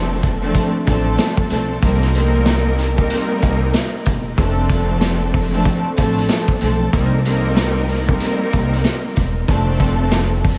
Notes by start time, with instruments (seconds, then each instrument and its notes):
Already playing: upright bass F1, string section F3 A3 C4 D4 A4
0.23 kick, closed hi-hat
0.40 string section F3 A3 C4 D4 A4
0.54 kick, closed hi-hat
0.85 upright bass A1, string section F3 A3 C4 D4 A4, kick, closed hi-hat
1.18 snare, closed hi-hat
1.37 kick
1.49 upright bass B1, string section F3 A3 C4 D4 A4, closed hi-hat
1.80 upright bass C2, string section G3 A#3 C4 D#4 A#4, kick, closed hi-hat
2.02 snare
2.13 string section G3 A#3 C4 D#4 A#4, closed hi-hat
2.46 snare, closed hi-hat
2.78 closed hi-hat
2.95 string section G3 A#3 C4 D#4 A#4, kick
3.10 closed hi-hat
3.42 upright bass C2, kick, closed hi-hat
3.73 snare, closed hi-hat
4.06 upright bass E1, kick, closed hi-hat
4.36 upright bass F1, string section F3 A3 C4 D4 A4, kick, closed hi-hat
4.69 kick, closed hi-hat
5.01 snare, closed hi-hat
5.34 kick, open hi-hat
5.51 string section F3 A3 C4 D4 A4
5.65 kick, closed hi-hat
5.96 upright bass A1, string section F3 A3 C4 D4 A4, kick, closed hi-hat
6.18 closed hi-hat
6.29 snare, closed hi-hat
6.48 kick
6.60 upright bass B1, string section F3 A3 C4 D4 A4, closed hi-hat
6.91 upright bass C2, string section G3 A#3 C4 D#4 A#4, kick, closed hi-hat
7.23 string section G3 A#3 C4 D#4 A#4, closed hi-hat
7.56 snare, closed hi-hat
7.89 open hi-hat
8.06 string section G3 A#3 C4 D#4 A#4, kick
8.20 closed hi-hat
8.53 upright bass C2, kick, closed hi-hat
8.73 closed hi-hat
8.84 snare, closed hi-hat
9.16 upright bass E1, kick, closed hi-hat
9.47 upright bass F1, string section F3 A3 C4 D4 A4, kick, closed hi-hat
9.80 kick, closed hi-hat
10.11 snare, closed hi-hat
10.44 kick, open hi-hat